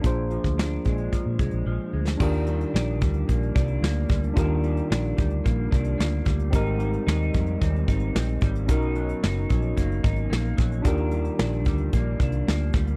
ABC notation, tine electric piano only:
X:1
M:4/4
L:1/8
Q:1/4=111
K:Eb
V:1 name="Tine electric piano"
[DFAc]8 | [DFGB]8 | [DFGB]8 | [CEGB]8 |
[_D^D^F^A]8 | [DFGB]8 |]